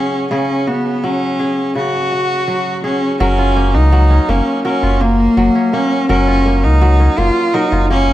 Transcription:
Already playing: kora C#3 F#3 F#4 G#4, cello C#4
0.31 kora C#3 G#4, cello C#4
0.67 cello B3, kora F#4
1.04 kora F#3, cello C#4
1.40 kora G#4
1.75 kora C#3, cello F#4
2.12 kora F#4
2.48 kora F#3
2.84 cello C#4, kora G#4
3.20 sub bass F#1, kora F#3 A#4, cello C#4
3.38 kora F4
3.56 kora A#3
3.74 sub bass C#2, cello D#4
3.92 kora F#3
4.10 kora C#4
4.29 sub bass F#1, kora A#3, cello C#4
4.65 kora F#3 A#4, cello C#4
4.83 sub bass F#1, kora F4
5.01 kora A#3, cello A#3
5.37 sub bass F#1, kora F#3
5.55 kora C#4
5.73 kora A#3, cello C#4
6.09 sub bass F#1, kora F#3 A#4, cello C#4
6.27 kora F4
6.46 kora A#3
6.64 sub bass C#2, cello D#4
6.81 kora F#3
7.00 kora C#4
7.18 sub bass F#1, kora A#3, cello F4
7.54 kora F#3 A#4, cello D#4
7.72 sub bass F#1, kora F4
7.90 kora A#3, cello C#4

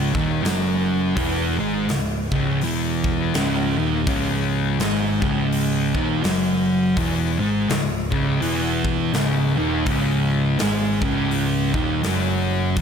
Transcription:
Already playing: picked electric bass C#1, distorted electric guitar C#2 C#3
0.14 picked electric bass D#1, distorted electric guitar D#2 D#3, kick
0.44 picked electric bass F#1, distorted electric guitar F#2 F#3, snare, open hi-hat
1.17 picked electric bass E1, distorted electric guitar E2 E3, kick, open hi-hat
1.59 picked electric bass G#1, distorted electric guitar G#2 G#3
1.89 picked electric bass C#1, distorted electric guitar C#2, snare, open hi-hat
2.32 picked electric bass C#1, distorted electric guitar C#2 C#3, kick
2.61 picked electric bass E1, distorted electric guitar E2 E3, open hi-hat
3.04 kick
3.34 picked electric bass C#1, distorted electric guitar C#2 C#3, snare, open hi-hat
3.77 picked electric bass D#1, distorted electric guitar D#2 D#3
4.07 picked electric bass C#1, distorted electric guitar C#2 C#3, kick, open hi-hat
4.79 picked electric bass G#1, distorted electric guitar G#2 G#3, snare, open hi-hat
5.21 picked electric bass C#1, distorted electric guitar C#2 C#3, kick
5.52 open hi-hat
5.94 picked electric bass D#1, distorted electric guitar D#2 D#3, kick
6.24 picked electric bass F#1, distorted electric guitar F#2 F#3, snare, open hi-hat
6.97 picked electric bass E1, distorted electric guitar E2 E3, kick, open hi-hat
7.39 picked electric bass G#1, distorted electric guitar G#2 G#3
7.69 picked electric bass C#1, distorted electric guitar C#2, snare, open hi-hat
8.11 picked electric bass C#1, distorted electric guitar C#2 C#3, kick
8.41 picked electric bass E1, distorted electric guitar E2 E3, open hi-hat
8.85 kick
9.14 picked electric bass C#1, distorted electric guitar C#2 C#3, snare, open hi-hat
9.57 picked electric bass D#1, distorted electric guitar D#2 D#3
9.86 picked electric bass C#1, distorted electric guitar C#2 C#3, kick, open hi-hat
10.59 picked electric bass G#1, distorted electric guitar G#2 G#3, snare, open hi-hat
11.02 picked electric bass C#1, distorted electric guitar C#2 C#3, kick
11.31 open hi-hat
11.74 picked electric bass D#1, distorted electric guitar D#2 D#3, kick
12.04 picked electric bass F#1, distorted electric guitar F#2 F#3, snare, open hi-hat
12.77 picked electric bass E1, distorted electric guitar E2 E3, kick, open hi-hat

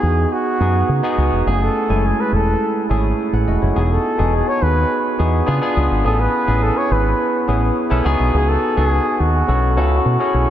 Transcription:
Already playing: tine electric piano B3 D#4 F#4 G#4 B4, flugelhorn G#4
0.03 fingered electric bass E2
0.33 flugelhorn F#4
0.60 fingered electric bass F#2, tine electric piano B3 D#4 F#4 G#4
0.89 fingered electric bass C#3
1.03 tine electric piano B3 D#4 F#4 G#4
1.18 fingered electric bass C#2
1.32 fingered electric bass E1
1.46 fingered electric bass F#1, tine electric piano A3 C#4 E4 G#4, flugelhorn G#4
1.62 flugelhorn A4
1.89 fingered electric bass F#1, tine electric piano G#3 C#4 E4 G#5
1.96 tine electric piano A3
2.06 flugelhorn G#4
2.20 flugelhorn B4
2.32 fingered electric bass E1, flugelhorn A4
2.89 fingered electric bass G#1, tine electric piano A3 C#4 E4 G#4
3.33 fingered electric bass A1, tine electric piano A4 F#5
3.47 fingered electric bass E1, tine electric piano F#4 D#5
3.62 fingered electric bass F#1, tine electric piano E4 C#5
3.75 fingered electric bass E1, tine electric piano B3 D#4 F#4 G#4, flugelhorn G#4
3.92 flugelhorn A4
4.18 fingered electric bass E1, tine electric piano B3 D#4 F#4 G#4
4.35 flugelhorn G#4
4.49 flugelhorn C#5
4.62 fingered electric bass D#2, flugelhorn B4
5.18 fingered electric bass E2, tine electric piano B3 D#4 F#4 G#4
5.46 fingered electric bass C#3, tine electric piano B3 D4 F4 G#4
5.61 tine electric piano B3 D4 F4 G#4
5.77 fingered electric bass C#2
5.91 fingered electric bass G#1
6.04 fingered electric bass A1, tine electric piano B3 C#4 E4 G#4, flugelhorn A4
6.20 flugelhorn B4
6.47 fingered electric bass A1, tine electric piano B3 C#4 E4 G#4
6.63 flugelhorn A4
6.77 flugelhorn C#5
6.91 fingered electric bass G#1, flugelhorn B4
7.47 fingered electric bass A1, tine electric piano B3 C#4 E4 G#4
7.90 fingered electric bass B1, tine electric piano B3 C#4 E4 A4
8.05 fingered electric bass C#2, tine electric piano B3 D#4 F#4 G#4
8.20 fingered electric bass B1
8.34 fingered electric bass C#2, flugelhorn G#4
8.49 flugelhorn A4
8.76 fingered electric bass C#2, tine electric piano B3 D#4 F#4 G#4, flugelhorn G#4
9.20 fingered electric bass D#2, flugelhorn F#4
9.48 fingered electric bass B1, tine electric piano C#4 E4 F#4 A4
9.77 fingered electric bass C#2, tine electric piano C#4 E4 F#4 A4
10.05 fingered electric bass B2
10.19 tine electric piano C#4 E4 F#4 G#4
10.34 fingered electric bass B1

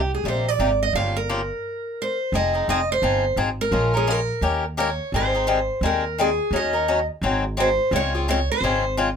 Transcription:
Already playing: upright bass C2, steel-string acoustic guitar G4
0.15 steel-string acoustic guitar G#4
0.24 upright bass A#1, steel-string acoustic guitar C3 G3 A#3 D#4 G4
0.28 steel-string acoustic guitar C5
0.48 steel-string acoustic guitar D5
0.59 upright bass G#1, steel-string acoustic guitar C3 G3 A#3 D#4 G4
0.83 steel-string acoustic guitar D#5
0.93 upright bass G1, steel-string acoustic guitar C#3 F3 A#3 F4 G4 F5
1.17 steel-string acoustic guitar A#4
1.29 steel-string acoustic guitar C#3 F3 A#3 F4 G4
2.02 steel-string acoustic guitar C5
2.32 upright bass F1, steel-string acoustic guitar F3 C4 D#4 G#4 D#5
2.54 steel-string acoustic guitar C4 D#4 G#4
2.68 upright bass F1, steel-string acoustic guitar F3 C4 D#4 G#4 D#5
2.92 steel-string acoustic guitar C5
3.02 upright bass G1, steel-string acoustic guitar F3 C4 D#4 G#4
3.36 upright bass G#1, steel-string acoustic guitar F3 C4 D#4 G#4
3.61 steel-string acoustic guitar A#4
3.71 upright bass A#1, steel-string acoustic guitar F3 G#3 C#4 F4 A#4
3.94 steel-string acoustic guitar C#4 F4 G#4 A#4
4.07 steel-string acoustic guitar F3 G#3 C#4 F4 A#4
4.41 upright bass D#2, steel-string acoustic guitar D#3 A#3 C#4 G4 A#4
4.77 steel-string acoustic guitar D#3 A#3 C#4 G4 A#4 C#5
5.12 upright bass G#1, steel-string acoustic guitar D#3 G3 C4 D#4 G#4 C5
5.34 steel-string acoustic guitar C4 D#4 G#4
5.47 steel-string acoustic guitar D#3 G3 C4 D#4 G#4
5.81 upright bass D#2, steel-string acoustic guitar D#3 G3 C4 D#4 G#4
5.85 steel-string acoustic guitar A#4
6.18 steel-string acoustic guitar D#3 G3 C4 D#4 G#4
6.51 upright bass D#2, steel-string acoustic guitar D#3 F#3 C#4 D#4 A#4
6.56 steel-string acoustic guitar D#5
6.73 steel-string acoustic guitar C#4 D#4 A#4
6.88 steel-string acoustic guitar D#3 F#3 C#4 D#4 A#4
7.22 upright bass G#1, steel-string acoustic guitar D#3 F#3 C4 D#4 G#4
7.57 steel-string acoustic guitar D#3 F#3 C4 D#4 G#4 C5
7.91 upright bass C#2, steel-string acoustic guitar C#3 G#3 C4 F4 G#4
7.96 steel-string acoustic guitar C#5
8.15 steel-string acoustic guitar C4 F4 G#4
8.28 steel-string acoustic guitar C#3 G#3 C4 F4 G#4 C#5
8.52 steel-string acoustic guitar C5
8.61 upright bass G#1, steel-string acoustic guitar C#3 G#3 C4 F4 G#4
8.97 steel-string acoustic guitar C#3 G#3 C4 F4 G#4

